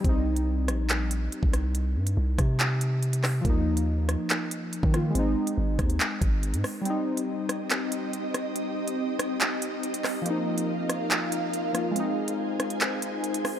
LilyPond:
<<
  \new Staff \with { instrumentName = "Ambient pad" } { \time 4/4 \key c \minor \tempo 4 = 141 r1 | r1 | r1 | r1 |
<c' ees' g' ees''>1~ | <c' ees' g' ees''>1 | <f' bes' f''>1 | <aes' c'' aes''>1 | }
  \new Staff \with { instrumentName = "Synth keys" } { \time 4/4 \key c \minor <g c' ees'>1~ | <g c' ees'>1 | <f bes ees'>2.~ <f bes ees'>8 <f bes f'>8 | <aes c' ees'>1 |
<g c' ees'>1~ | <g c' ees'>1 | <f bes ees'>2.~ <f bes ees'>8 <f bes f'>8 | <aes c' ees'>1 | }
  \new Staff \with { instrumentName = "808-style bass" } { \clef bass \time 4/4 \key c \minor c,4. bes,,4. r16 c,8.~ | c,8 g,8 c,8 c2~ c8 | ees,4.~ ees,16 r4. ees8. | aes,,8 r8 aes,,8 ees,8 r8 aes,,8. aes,16 r8 |
r1 | r1 | r1 | r1 | }
  \new DrumStaff \with { instrumentName = "Drums" } \drummode { \time 4/4 <hh bd>8. hh16 r8 <hh ss>8 <hc hh>8 hh8 hh16 bd16 <hh ss>8 | hh8. hh16 r8 <hh bd ss>8 <hc hh>8 hh8 hh16 hh16 <hc hho ss>8 | <hh bd>8. hh16 r8 <hh ss>8 <hc hh>8 hh8 hh16 bd16 <hh ss>8 | hh8. hh16 r8 <hh bd ss>16 hh16 <hc hh>8 <hh bd>8 hh16 hh16 <hho ss>8 |
hh8. hh16 r8 <hh ss>8 <hc hh>8 hh8 hh8 <hh ss>8 | hh8. hh16 r8 <hh ss>8 <hc hh>8 hh8 hh16 hh16 <hc hho ss>8 | hh8. hh16 r8 <hh ss>8 <hc hh>8 hh8 hh8 <hh ss>8 | hh8. hh16 r8 <hh ss>16 hh16 <hc hh>8 hh8 hh16 hh16 <hho ss>8 | }
>>